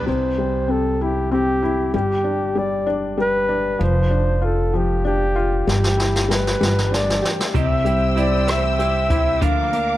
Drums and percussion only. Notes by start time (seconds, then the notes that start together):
5.69 snare
5.84 snare
6.00 snare
6.16 snare
6.31 snare
6.47 snare
6.63 snare
6.78 snare
6.94 snare
7.10 snare
7.25 snare
7.40 snare
7.55 kick, closed hi-hat
7.86 closed hi-hat
8.17 closed hi-hat
8.48 cross-stick, closed hi-hat
8.79 closed hi-hat
9.10 kick, closed hi-hat
9.42 kick, closed hi-hat
9.73 closed hi-hat